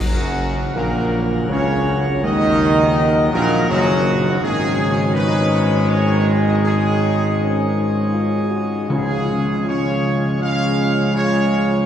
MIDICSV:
0, 0, Header, 1, 8, 480
1, 0, Start_track
1, 0, Key_signature, 6, "major"
1, 0, Tempo, 744417
1, 3, Time_signature, 3, 2, 24, 8
1, 1442, Tempo, 728155
1, 3842, Tempo, 758534
1, 6242, Tempo, 738916
1, 7664, End_track
2, 0, Start_track
2, 0, Title_t, "Trumpet section"
2, 0, Program_c, 0, 61
2, 4, Note_on_c, 0, 66, 110
2, 463, Note_off_c, 0, 66, 0
2, 490, Note_on_c, 0, 70, 109
2, 941, Note_off_c, 0, 70, 0
2, 968, Note_on_c, 0, 73, 121
2, 1417, Note_off_c, 0, 73, 0
2, 1440, Note_on_c, 0, 75, 127
2, 2136, Note_off_c, 0, 75, 0
2, 2163, Note_on_c, 0, 70, 127
2, 2387, Note_off_c, 0, 70, 0
2, 2402, Note_on_c, 0, 66, 127
2, 2851, Note_off_c, 0, 66, 0
2, 2878, Note_on_c, 0, 68, 127
2, 3328, Note_off_c, 0, 68, 0
2, 3356, Note_on_c, 0, 71, 127
2, 3816, Note_off_c, 0, 71, 0
2, 3840, Note_on_c, 0, 73, 127
2, 4100, Note_off_c, 0, 73, 0
2, 4207, Note_on_c, 0, 75, 106
2, 4259, Note_off_c, 0, 75, 0
2, 4319, Note_on_c, 0, 68, 125
2, 5242, Note_off_c, 0, 68, 0
2, 5750, Note_on_c, 0, 68, 121
2, 6216, Note_off_c, 0, 68, 0
2, 6239, Note_on_c, 0, 73, 121
2, 6697, Note_off_c, 0, 73, 0
2, 6719, Note_on_c, 0, 77, 127
2, 7174, Note_off_c, 0, 77, 0
2, 7198, Note_on_c, 0, 73, 127
2, 7654, Note_off_c, 0, 73, 0
2, 7664, End_track
3, 0, Start_track
3, 0, Title_t, "French horn section"
3, 0, Program_c, 1, 60
3, 4, Note_on_c, 1, 54, 112
3, 463, Note_off_c, 1, 54, 0
3, 486, Note_on_c, 1, 58, 116
3, 939, Note_off_c, 1, 58, 0
3, 966, Note_on_c, 1, 61, 110
3, 1416, Note_off_c, 1, 61, 0
3, 1439, Note_on_c, 1, 63, 127
3, 2135, Note_off_c, 1, 63, 0
3, 2165, Note_on_c, 1, 58, 127
3, 2405, Note_off_c, 1, 58, 0
3, 2408, Note_on_c, 1, 54, 127
3, 2855, Note_off_c, 1, 54, 0
3, 2878, Note_on_c, 1, 63, 120
3, 2882, Note_on_c, 1, 61, 127
3, 4719, Note_off_c, 1, 63, 0
3, 4720, Note_off_c, 1, 61, 0
3, 4798, Note_on_c, 1, 61, 95
3, 5015, Note_off_c, 1, 61, 0
3, 5022, Note_on_c, 1, 63, 90
3, 5246, Note_off_c, 1, 63, 0
3, 5260, Note_on_c, 1, 65, 98
3, 5488, Note_off_c, 1, 65, 0
3, 5499, Note_on_c, 1, 66, 96
3, 5729, Note_off_c, 1, 66, 0
3, 5745, Note_on_c, 1, 61, 97
3, 5749, Note_on_c, 1, 65, 101
3, 6214, Note_off_c, 1, 61, 0
3, 6215, Note_off_c, 1, 65, 0
3, 6234, Note_on_c, 1, 65, 106
3, 6235, Note_on_c, 1, 61, 99
3, 6695, Note_off_c, 1, 61, 0
3, 6695, Note_off_c, 1, 65, 0
3, 6721, Note_on_c, 1, 61, 97
3, 6722, Note_on_c, 1, 65, 96
3, 7175, Note_off_c, 1, 61, 0
3, 7175, Note_off_c, 1, 65, 0
3, 7202, Note_on_c, 1, 61, 112
3, 7204, Note_on_c, 1, 65, 108
3, 7656, Note_off_c, 1, 61, 0
3, 7658, Note_off_c, 1, 65, 0
3, 7664, End_track
4, 0, Start_track
4, 0, Title_t, "Pipe organ"
4, 0, Program_c, 2, 19
4, 3, Note_on_c, 2, 66, 77
4, 4, Note_on_c, 2, 54, 74
4, 6, Note_on_c, 2, 49, 75
4, 8, Note_on_c, 2, 70, 72
4, 1418, Note_off_c, 2, 49, 0
4, 1440, Note_on_c, 2, 51, 87
4, 2853, Note_off_c, 2, 54, 0
4, 2853, Note_off_c, 2, 66, 0
4, 2855, Note_off_c, 2, 70, 0
4, 2869, Note_off_c, 2, 51, 0
4, 2882, Note_on_c, 2, 51, 106
4, 2882, Note_on_c, 2, 63, 103
4, 2884, Note_on_c, 2, 56, 101
4, 2884, Note_on_c, 2, 73, 99
4, 5727, Note_off_c, 2, 51, 0
4, 5737, Note_off_c, 2, 56, 0
4, 5737, Note_off_c, 2, 73, 0
4, 5749, Note_on_c, 2, 53, 80
4, 5749, Note_on_c, 2, 56, 82
4, 5749, Note_on_c, 2, 61, 83
4, 5750, Note_on_c, 2, 73, 81
4, 5752, Note_off_c, 2, 63, 0
4, 7664, Note_off_c, 2, 53, 0
4, 7664, Note_off_c, 2, 56, 0
4, 7664, Note_off_c, 2, 61, 0
4, 7664, Note_off_c, 2, 73, 0
4, 7664, End_track
5, 0, Start_track
5, 0, Title_t, "Timpani"
5, 0, Program_c, 3, 47
5, 5754, Note_on_c, 3, 49, 127
5, 6461, Note_off_c, 3, 49, 0
5, 7664, End_track
6, 0, Start_track
6, 0, Title_t, "Trombone section"
6, 0, Program_c, 4, 61
6, 3, Note_on_c, 4, 42, 114
6, 463, Note_off_c, 4, 42, 0
6, 481, Note_on_c, 4, 46, 115
6, 937, Note_off_c, 4, 46, 0
6, 962, Note_on_c, 4, 49, 113
6, 1414, Note_off_c, 4, 49, 0
6, 1439, Note_on_c, 4, 51, 127
6, 2136, Note_off_c, 4, 51, 0
6, 2162, Note_on_c, 4, 46, 127
6, 2386, Note_off_c, 4, 46, 0
6, 2406, Note_on_c, 4, 42, 127
6, 2854, Note_off_c, 4, 42, 0
6, 2875, Note_on_c, 4, 56, 127
6, 2877, Note_on_c, 4, 51, 121
6, 5514, Note_off_c, 4, 56, 0
6, 5515, Note_off_c, 4, 51, 0
6, 5748, Note_on_c, 4, 49, 99
6, 5750, Note_on_c, 4, 56, 106
6, 6215, Note_off_c, 4, 49, 0
6, 6216, Note_off_c, 4, 56, 0
6, 6237, Note_on_c, 4, 49, 100
6, 6238, Note_on_c, 4, 56, 101
6, 6696, Note_off_c, 4, 49, 0
6, 6697, Note_off_c, 4, 56, 0
6, 6725, Note_on_c, 4, 49, 103
6, 6727, Note_on_c, 4, 56, 104
6, 7176, Note_off_c, 4, 49, 0
6, 7177, Note_off_c, 4, 56, 0
6, 7197, Note_on_c, 4, 49, 115
6, 7200, Note_on_c, 4, 56, 113
6, 7654, Note_off_c, 4, 49, 0
6, 7656, Note_off_c, 4, 56, 0
6, 7664, End_track
7, 0, Start_track
7, 0, Title_t, "Tuba"
7, 0, Program_c, 5, 58
7, 3, Note_on_c, 5, 30, 109
7, 462, Note_off_c, 5, 30, 0
7, 487, Note_on_c, 5, 34, 117
7, 940, Note_off_c, 5, 34, 0
7, 964, Note_on_c, 5, 37, 118
7, 1441, Note_on_c, 5, 39, 122
7, 1451, Note_off_c, 5, 37, 0
7, 2160, Note_off_c, 5, 39, 0
7, 2164, Note_on_c, 5, 34, 127
7, 2387, Note_off_c, 5, 34, 0
7, 2405, Note_on_c, 5, 30, 127
7, 2853, Note_off_c, 5, 30, 0
7, 2882, Note_on_c, 5, 32, 127
7, 5517, Note_off_c, 5, 32, 0
7, 5752, Note_on_c, 5, 37, 110
7, 7664, Note_off_c, 5, 37, 0
7, 7664, End_track
8, 0, Start_track
8, 0, Title_t, "Drums"
8, 1, Note_on_c, 9, 35, 89
8, 1, Note_on_c, 9, 49, 78
8, 66, Note_off_c, 9, 35, 0
8, 66, Note_off_c, 9, 49, 0
8, 7664, End_track
0, 0, End_of_file